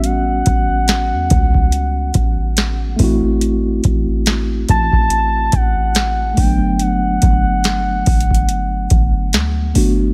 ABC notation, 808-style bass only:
X:1
M:4/4
L:1/16
Q:"Swing 16ths" 1/4=71
K:Amix
V:1 name="808-style bass" clef=bass
A,,,2 A,,,3 E,, C,,4 A,,,4 A,,,2- | A,,,2 A,,,4 A,,,4 A,,,4 G,,,2- | G,,,2 G,,,4 G,,,4 G,,,2 D,,2 G,,,2 |]